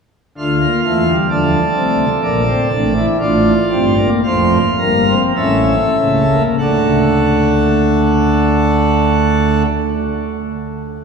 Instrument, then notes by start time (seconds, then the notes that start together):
pipe organ
0.38 D2 D3 A3 F4 F5
0.61 A#3
0.84 E2 E3 A3
1.08 G3
1.30 D2 D3 F3 A4 D5
1.76 C2 C3 A3
2.22 A#1 A#2 A#3 D5
2.48 C4
2.72 A1 A2 D4
2.96 E4
3.20 A1 A2 D4 F4 D5
3.72 G1 G2 C4
3.98 A#3
4.24 F1 F2 A3 C5 F5
4.79 G1 G2 A#3 A#4
5.09 C4
5.36 A1 A2 C#4 A4 E5
5.97 C#2 C#3 A3
6.28 A#3
6.59 D2 D3 A3 D4 A4 F#5
6.63 F#4